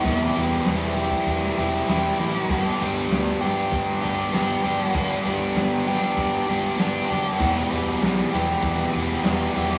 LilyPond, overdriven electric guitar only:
\new Staff \with { instrumentName = "Overdriven electric guitar" } { \time 4/4 \key g \major \tempo 4 = 98 <e, b, e g e' g'>8 <e g e' g'>4 <e g e' g'>4 <e g e' g'>8 <e g e' g'>8 <e g e' g'>8 | <g, d g b d' g'>8 <g b d' g'>4 <g b d' g'>4 <g b d' g'>8 <g b d' g'>8 <g b d' g'>8 | <g, d g b d' g'>8 <g b d' g'>4 <g b d' g'>4 <g b d' g'>8 <g b d' g'>8 <g b d' g'>8 | <e, b, e g b g'>8 <e g b g'>4 <e g b g'>4 <e g b g'>8 <e g b g'>8 <e g b g'>8 | }